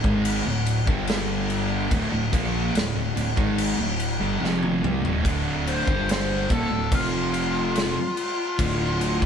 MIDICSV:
0, 0, Header, 1, 5, 480
1, 0, Start_track
1, 0, Tempo, 834492
1, 1100, Time_signature, 4, 2, 24, 8
1, 5325, End_track
2, 0, Start_track
2, 0, Title_t, "Lead electric guitar"
2, 0, Program_c, 0, 29
2, 3270, Note_on_c, 0, 72, 90
2, 3497, Note_off_c, 0, 72, 0
2, 3514, Note_on_c, 0, 72, 77
2, 3739, Note_off_c, 0, 72, 0
2, 3751, Note_on_c, 0, 69, 83
2, 3978, Note_off_c, 0, 69, 0
2, 3996, Note_on_c, 0, 65, 96
2, 5325, Note_off_c, 0, 65, 0
2, 5325, End_track
3, 0, Start_track
3, 0, Title_t, "Distorted electric guitar"
3, 0, Program_c, 1, 30
3, 20, Note_on_c, 1, 44, 84
3, 22, Note_on_c, 1, 51, 90
3, 28, Note_on_c, 1, 56, 93
3, 254, Note_off_c, 1, 44, 0
3, 255, Note_off_c, 1, 51, 0
3, 258, Note_off_c, 1, 56, 0
3, 263, Note_on_c, 1, 38, 73
3, 263, Note_on_c, 1, 45, 72
3, 454, Note_off_c, 1, 38, 0
3, 455, Note_off_c, 1, 45, 0
3, 496, Note_on_c, 1, 43, 99
3, 502, Note_on_c, 1, 50, 106
3, 503, Note_on_c, 1, 55, 112
3, 1090, Note_off_c, 1, 43, 0
3, 1092, Note_on_c, 1, 38, 91
3, 1093, Note_off_c, 1, 50, 0
3, 1093, Note_off_c, 1, 55, 0
3, 1097, Note_on_c, 1, 45, 104
3, 1209, Note_off_c, 1, 38, 0
3, 1211, Note_off_c, 1, 45, 0
3, 1219, Note_on_c, 1, 38, 65
3, 1221, Note_on_c, 1, 45, 72
3, 1332, Note_off_c, 1, 38, 0
3, 1335, Note_on_c, 1, 46, 86
3, 1336, Note_off_c, 1, 45, 0
3, 1338, Note_on_c, 1, 53, 97
3, 1343, Note_on_c, 1, 58, 109
3, 1569, Note_off_c, 1, 46, 0
3, 1571, Note_off_c, 1, 53, 0
3, 1573, Note_off_c, 1, 58, 0
3, 1574, Note_on_c, 1, 38, 55
3, 1576, Note_on_c, 1, 45, 68
3, 1690, Note_off_c, 1, 45, 0
3, 1691, Note_off_c, 1, 38, 0
3, 1697, Note_on_c, 1, 45, 70
3, 1698, Note_on_c, 1, 38, 70
3, 1817, Note_off_c, 1, 45, 0
3, 1818, Note_off_c, 1, 38, 0
3, 1824, Note_on_c, 1, 38, 57
3, 1827, Note_on_c, 1, 45, 76
3, 1940, Note_off_c, 1, 38, 0
3, 1942, Note_off_c, 1, 45, 0
3, 1942, Note_on_c, 1, 44, 85
3, 1947, Note_on_c, 1, 51, 93
3, 1951, Note_on_c, 1, 56, 99
3, 2172, Note_off_c, 1, 44, 0
3, 2175, Note_off_c, 1, 51, 0
3, 2176, Note_off_c, 1, 56, 0
3, 2177, Note_on_c, 1, 38, 68
3, 2180, Note_on_c, 1, 45, 76
3, 2369, Note_off_c, 1, 38, 0
3, 2370, Note_off_c, 1, 45, 0
3, 2414, Note_on_c, 1, 43, 100
3, 2420, Note_on_c, 1, 50, 109
3, 2524, Note_off_c, 1, 43, 0
3, 2526, Note_on_c, 1, 41, 82
3, 2528, Note_off_c, 1, 50, 0
3, 2530, Note_on_c, 1, 48, 103
3, 2533, Note_on_c, 1, 53, 110
3, 2760, Note_off_c, 1, 48, 0
3, 2764, Note_off_c, 1, 41, 0
3, 2767, Note_off_c, 1, 53, 0
3, 2767, Note_on_c, 1, 48, 94
3, 2771, Note_on_c, 1, 55, 108
3, 2882, Note_off_c, 1, 48, 0
3, 2884, Note_on_c, 1, 38, 92
3, 2886, Note_off_c, 1, 55, 0
3, 2889, Note_on_c, 1, 45, 106
3, 3000, Note_off_c, 1, 38, 0
3, 3005, Note_off_c, 1, 45, 0
3, 3007, Note_on_c, 1, 38, 89
3, 3013, Note_on_c, 1, 45, 108
3, 3014, Note_on_c, 1, 50, 110
3, 3365, Note_off_c, 1, 38, 0
3, 3368, Note_off_c, 1, 45, 0
3, 3368, Note_off_c, 1, 50, 0
3, 3372, Note_on_c, 1, 43, 83
3, 3376, Note_on_c, 1, 50, 98
3, 3381, Note_on_c, 1, 55, 102
3, 3728, Note_off_c, 1, 43, 0
3, 3730, Note_off_c, 1, 50, 0
3, 3732, Note_off_c, 1, 55, 0
3, 3733, Note_on_c, 1, 39, 86
3, 3737, Note_on_c, 1, 46, 96
3, 3848, Note_off_c, 1, 39, 0
3, 3850, Note_off_c, 1, 46, 0
3, 3853, Note_on_c, 1, 38, 61
3, 3858, Note_on_c, 1, 45, 72
3, 3970, Note_off_c, 1, 38, 0
3, 3973, Note_on_c, 1, 41, 98
3, 3976, Note_off_c, 1, 45, 0
3, 3978, Note_on_c, 1, 48, 98
3, 3980, Note_on_c, 1, 53, 105
3, 4570, Note_off_c, 1, 41, 0
3, 4573, Note_off_c, 1, 48, 0
3, 4574, Note_off_c, 1, 53, 0
3, 4939, Note_on_c, 1, 38, 92
3, 4942, Note_on_c, 1, 45, 88
3, 4946, Note_on_c, 1, 50, 98
3, 5291, Note_off_c, 1, 38, 0
3, 5292, Note_off_c, 1, 50, 0
3, 5294, Note_on_c, 1, 43, 89
3, 5296, Note_off_c, 1, 45, 0
3, 5299, Note_on_c, 1, 50, 86
3, 5304, Note_on_c, 1, 55, 102
3, 5325, Note_off_c, 1, 43, 0
3, 5325, Note_off_c, 1, 50, 0
3, 5325, Note_off_c, 1, 55, 0
3, 5325, End_track
4, 0, Start_track
4, 0, Title_t, "Fingered electric bass"
4, 0, Program_c, 2, 33
4, 25, Note_on_c, 2, 32, 100
4, 247, Note_off_c, 2, 32, 0
4, 262, Note_on_c, 2, 26, 82
4, 485, Note_off_c, 2, 26, 0
4, 503, Note_on_c, 2, 31, 99
4, 1077, Note_off_c, 2, 31, 0
4, 1100, Note_on_c, 2, 26, 102
4, 1211, Note_off_c, 2, 26, 0
4, 1220, Note_on_c, 2, 26, 82
4, 1331, Note_off_c, 2, 26, 0
4, 1340, Note_on_c, 2, 34, 89
4, 1562, Note_off_c, 2, 34, 0
4, 1577, Note_on_c, 2, 26, 81
4, 1689, Note_off_c, 2, 26, 0
4, 1697, Note_on_c, 2, 26, 80
4, 1809, Note_off_c, 2, 26, 0
4, 1818, Note_on_c, 2, 26, 85
4, 1929, Note_off_c, 2, 26, 0
4, 1940, Note_on_c, 2, 32, 90
4, 2162, Note_off_c, 2, 32, 0
4, 2176, Note_on_c, 2, 26, 88
4, 2399, Note_off_c, 2, 26, 0
4, 2417, Note_on_c, 2, 31, 101
4, 2528, Note_off_c, 2, 31, 0
4, 2538, Note_on_c, 2, 29, 96
4, 2761, Note_off_c, 2, 29, 0
4, 2777, Note_on_c, 2, 36, 100
4, 2888, Note_off_c, 2, 36, 0
4, 2901, Note_on_c, 2, 26, 103
4, 3011, Note_off_c, 2, 26, 0
4, 3020, Note_on_c, 2, 26, 93
4, 3356, Note_off_c, 2, 26, 0
4, 3377, Note_on_c, 2, 31, 101
4, 3715, Note_off_c, 2, 31, 0
4, 3741, Note_on_c, 2, 27, 90
4, 3851, Note_off_c, 2, 27, 0
4, 3856, Note_on_c, 2, 26, 77
4, 3969, Note_off_c, 2, 26, 0
4, 3980, Note_on_c, 2, 29, 90
4, 4558, Note_off_c, 2, 29, 0
4, 4941, Note_on_c, 2, 26, 102
4, 5281, Note_off_c, 2, 26, 0
4, 5304, Note_on_c, 2, 31, 105
4, 5325, Note_off_c, 2, 31, 0
4, 5325, End_track
5, 0, Start_track
5, 0, Title_t, "Drums"
5, 24, Note_on_c, 9, 36, 97
5, 81, Note_off_c, 9, 36, 0
5, 144, Note_on_c, 9, 49, 91
5, 201, Note_off_c, 9, 49, 0
5, 382, Note_on_c, 9, 49, 69
5, 440, Note_off_c, 9, 49, 0
5, 502, Note_on_c, 9, 36, 113
5, 560, Note_off_c, 9, 36, 0
5, 618, Note_on_c, 9, 49, 87
5, 631, Note_on_c, 9, 38, 118
5, 675, Note_off_c, 9, 49, 0
5, 689, Note_off_c, 9, 38, 0
5, 862, Note_on_c, 9, 49, 62
5, 920, Note_off_c, 9, 49, 0
5, 1100, Note_on_c, 9, 36, 102
5, 1100, Note_on_c, 9, 49, 75
5, 1157, Note_off_c, 9, 36, 0
5, 1157, Note_off_c, 9, 49, 0
5, 1340, Note_on_c, 9, 36, 103
5, 1345, Note_on_c, 9, 49, 63
5, 1398, Note_off_c, 9, 36, 0
5, 1402, Note_off_c, 9, 49, 0
5, 1583, Note_on_c, 9, 49, 85
5, 1596, Note_on_c, 9, 38, 124
5, 1640, Note_off_c, 9, 49, 0
5, 1654, Note_off_c, 9, 38, 0
5, 1824, Note_on_c, 9, 49, 67
5, 1881, Note_off_c, 9, 49, 0
5, 1940, Note_on_c, 9, 36, 101
5, 1998, Note_off_c, 9, 36, 0
5, 2061, Note_on_c, 9, 49, 98
5, 2119, Note_off_c, 9, 49, 0
5, 2299, Note_on_c, 9, 49, 66
5, 2356, Note_off_c, 9, 49, 0
5, 2556, Note_on_c, 9, 38, 61
5, 2614, Note_off_c, 9, 38, 0
5, 2661, Note_on_c, 9, 48, 70
5, 2719, Note_off_c, 9, 48, 0
5, 2786, Note_on_c, 9, 45, 100
5, 2844, Note_off_c, 9, 45, 0
5, 2904, Note_on_c, 9, 43, 97
5, 2962, Note_off_c, 9, 43, 0
5, 3019, Note_on_c, 9, 36, 105
5, 3023, Note_on_c, 9, 49, 77
5, 3077, Note_off_c, 9, 36, 0
5, 3081, Note_off_c, 9, 49, 0
5, 3264, Note_on_c, 9, 49, 61
5, 3321, Note_off_c, 9, 49, 0
5, 3379, Note_on_c, 9, 36, 106
5, 3437, Note_off_c, 9, 36, 0
5, 3504, Note_on_c, 9, 49, 86
5, 3517, Note_on_c, 9, 38, 110
5, 3561, Note_off_c, 9, 49, 0
5, 3574, Note_off_c, 9, 38, 0
5, 3740, Note_on_c, 9, 36, 112
5, 3747, Note_on_c, 9, 49, 61
5, 3797, Note_off_c, 9, 36, 0
5, 3804, Note_off_c, 9, 49, 0
5, 3979, Note_on_c, 9, 36, 118
5, 3980, Note_on_c, 9, 49, 86
5, 4037, Note_off_c, 9, 36, 0
5, 4038, Note_off_c, 9, 49, 0
5, 4221, Note_on_c, 9, 49, 65
5, 4279, Note_off_c, 9, 49, 0
5, 4461, Note_on_c, 9, 49, 79
5, 4474, Note_on_c, 9, 38, 113
5, 4518, Note_off_c, 9, 49, 0
5, 4531, Note_off_c, 9, 38, 0
5, 4700, Note_on_c, 9, 49, 67
5, 4757, Note_off_c, 9, 49, 0
5, 4939, Note_on_c, 9, 49, 83
5, 4941, Note_on_c, 9, 36, 104
5, 4997, Note_off_c, 9, 49, 0
5, 4998, Note_off_c, 9, 36, 0
5, 5183, Note_on_c, 9, 49, 65
5, 5240, Note_off_c, 9, 49, 0
5, 5304, Note_on_c, 9, 36, 103
5, 5325, Note_off_c, 9, 36, 0
5, 5325, End_track
0, 0, End_of_file